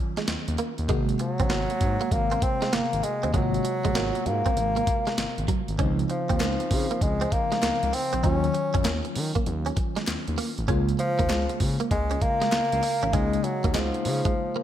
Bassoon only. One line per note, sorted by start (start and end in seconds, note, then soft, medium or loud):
1.21 2.14 F#3 loud
2.12 2.44 A#3 loud
2.43 2.75 C4 loud
2.73 3.05 A#3 loud
3.04 3.34 G#3 medium
3.35 4.28 F#3 loud
4.27 5.49 A#3 loud
6.10 7.04 F3 medium
7.02 7.34 G#3 loud
7.33 7.96 A#3 loud
7.94 8.24 C4 loud
8.25 9.12 C#4 loud
10.99 11.57 F3 loud
11.91 12.24 G#3 loud
12.22 13.15 A#3 loud
13.13 13.46 G#3 loud
13.44 13.74 F#3 medium
13.75 14.63 F3 medium